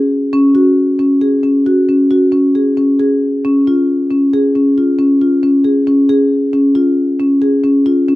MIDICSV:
0, 0, Header, 1, 2, 480
1, 0, Start_track
1, 0, Key_signature, -5, "major"
1, 0, Tempo, 442152
1, 364, Time_signature, 7, 2, 24, 8
1, 8851, End_track
2, 0, Start_track
2, 0, Title_t, "Marimba"
2, 0, Program_c, 0, 12
2, 0, Note_on_c, 0, 68, 58
2, 192, Note_off_c, 0, 68, 0
2, 358, Note_on_c, 0, 61, 73
2, 518, Note_off_c, 0, 61, 0
2, 594, Note_on_c, 0, 66, 67
2, 913, Note_off_c, 0, 66, 0
2, 1077, Note_on_c, 0, 61, 59
2, 1237, Note_off_c, 0, 61, 0
2, 1318, Note_on_c, 0, 68, 54
2, 1478, Note_off_c, 0, 68, 0
2, 1556, Note_on_c, 0, 61, 54
2, 1718, Note_off_c, 0, 61, 0
2, 1805, Note_on_c, 0, 66, 67
2, 1964, Note_off_c, 0, 66, 0
2, 2048, Note_on_c, 0, 61, 60
2, 2205, Note_off_c, 0, 61, 0
2, 2288, Note_on_c, 0, 66, 65
2, 2446, Note_off_c, 0, 66, 0
2, 2520, Note_on_c, 0, 61, 62
2, 2681, Note_off_c, 0, 61, 0
2, 2770, Note_on_c, 0, 68, 54
2, 2928, Note_off_c, 0, 68, 0
2, 3009, Note_on_c, 0, 61, 58
2, 3169, Note_off_c, 0, 61, 0
2, 3252, Note_on_c, 0, 68, 66
2, 3571, Note_off_c, 0, 68, 0
2, 3743, Note_on_c, 0, 61, 68
2, 3900, Note_off_c, 0, 61, 0
2, 3988, Note_on_c, 0, 65, 65
2, 4303, Note_off_c, 0, 65, 0
2, 4458, Note_on_c, 0, 61, 59
2, 4617, Note_off_c, 0, 61, 0
2, 4705, Note_on_c, 0, 68, 66
2, 4862, Note_off_c, 0, 68, 0
2, 4944, Note_on_c, 0, 61, 57
2, 5102, Note_off_c, 0, 61, 0
2, 5187, Note_on_c, 0, 65, 58
2, 5343, Note_off_c, 0, 65, 0
2, 5413, Note_on_c, 0, 61, 62
2, 5573, Note_off_c, 0, 61, 0
2, 5661, Note_on_c, 0, 65, 59
2, 5818, Note_off_c, 0, 65, 0
2, 5896, Note_on_c, 0, 61, 64
2, 6054, Note_off_c, 0, 61, 0
2, 6128, Note_on_c, 0, 68, 58
2, 6288, Note_off_c, 0, 68, 0
2, 6374, Note_on_c, 0, 61, 63
2, 6532, Note_off_c, 0, 61, 0
2, 6615, Note_on_c, 0, 68, 68
2, 6930, Note_off_c, 0, 68, 0
2, 7090, Note_on_c, 0, 61, 65
2, 7249, Note_off_c, 0, 61, 0
2, 7330, Note_on_c, 0, 65, 65
2, 7645, Note_off_c, 0, 65, 0
2, 7814, Note_on_c, 0, 61, 65
2, 7970, Note_off_c, 0, 61, 0
2, 8052, Note_on_c, 0, 68, 60
2, 8208, Note_off_c, 0, 68, 0
2, 8291, Note_on_c, 0, 61, 62
2, 8447, Note_off_c, 0, 61, 0
2, 8533, Note_on_c, 0, 65, 66
2, 8687, Note_off_c, 0, 65, 0
2, 8775, Note_on_c, 0, 61, 67
2, 8851, Note_off_c, 0, 61, 0
2, 8851, End_track
0, 0, End_of_file